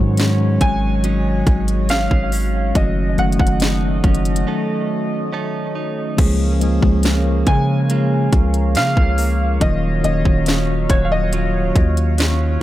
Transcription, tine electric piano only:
0.00 2.74 D#3 loud
0.00 2.74 F#3 medium
0.00 2.77 G#3 medium
0.00 2.76 C#4 medium
0.00 2.77 F#4 loud
2.74 3.02 D#3 medium
2.74 3.02 F#3 medium
2.74 3.03 A3 medium
2.74 3.03 C#4 medium
2.74 3.04 F#4 medium
3.17 4.27 D#3 medium
3.17 4.27 F#3 medium
3.17 4.27 A3 medium
3.17 4.28 C#4 medium
3.17 4.28 F#4 medium
6.17 6.45 F3 medium
6.17 6.45 G#3 medium
6.17 6.46 A#3 medium
6.17 6.46 C#4 medium
6.17 6.47 G#4 loud
6.60 7.70 F3 loud
6.60 7.70 G#3 medium
6.60 7.70 A#3 medium
6.60 7.71 C#4 medium
6.60 7.71 G#4 loud
9.60 9.88 D#3 medium
9.60 9.88 F#3 medium
9.60 9.88 A#3 medium
9.60 9.89 C#4 medium
9.60 9.89 F4 medium
10.02 11.12 D#3 medium
10.02 11.13 F#3 medium
10.02 11.13 A#3 medium
10.02 11.13 C#4 medium
10.02 11.14 F#4 medium

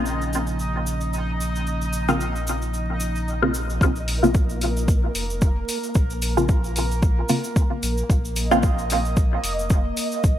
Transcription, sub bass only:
0.00 3.79 A#1 medium
3.81 5.09 A#1 loud
5.15 5.63 F1 medium
5.95 7.24 A#1 loud
7.83 8.03 A#1 loud
8.10 9.38 A#1 medium
9.44 9.92 F1 medium
10.24 10.39 A#1 loud

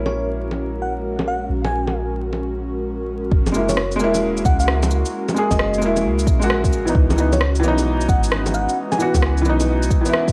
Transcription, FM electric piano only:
0.06 0.29 C#5 medium
0.82 0.94 F#5 medium
1.28 1.52 F#5 medium
1.65 1.95 G#5 medium
3.69 3.92 C#5 medium
4.46 4.57 F#5 medium
4.60 5.22 F#5 medium
5.51 5.82 D#5 medium
7.33 7.56 C#5 medium
8.09 8.21 F#5 medium
8.54 8.78 F#5 medium
8.92 9.23 G#5 medium

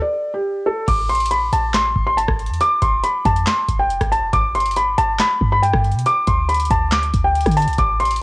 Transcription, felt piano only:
0.02 0.32 D5 medium
0.34 0.64 G4 medium
0.66 0.86 A4 medium
0.88 1.08 D6 medium
1.09 1.29 C6 medium
1.31 1.51 B5 medium
1.53 1.73 A5 medium
1.74 2.05 C6 medium
2.06 2.16 C6 medium
2.17 2.58 A5 medium
2.61 2.80 D6 loud
2.82 3.02 C6 medium
3.04 3.23 B5 medium
3.25 3.45 A5 medium
3.47 3.77 C6 medium
3.79 4.10 G5 medium
4.12 4.31 A5 medium
4.33 4.53 D6 medium
4.55 4.75 C6 medium
4.76 4.96 B5 medium
4.98 5.18 A5 medium
5.20 5.50 B5 loud
5.52 5.62 B5 medium
5.62 6.03 G5 medium
6.06 6.26 D6 loud
6.27 6.47 C6 medium
6.49 6.69 B5 medium
6.71 6.90 A5 medium
6.92 7.23 D6 medium
7.24 7.55 G5 medium
7.57 7.77 A5 medium
7.78 7.98 D6 medium
8.00 8.20 C6 medium

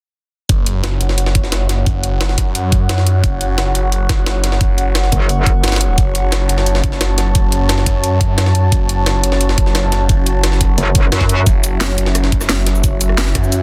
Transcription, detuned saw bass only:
0.49 0.99 F#1 medium
1.01 2.37 F#1 loud
2.38 3.22 F#2 loud
3.24 3.74 F#1 medium
3.75 5.11 F#1 loud
5.64 5.97 G1 medium
5.98 6.48 F#1 loud
6.49 7.85 F#1 loud
7.86 8.71 F#2 loud
8.72 9.22 F#1 loud
9.24 10.59 F#1 loud
10.61 10.77 F#1 loud
11.47 11.97 F#1 loud
11.98 13.34 F#1 loud
13.35 13.63 F#2 loud

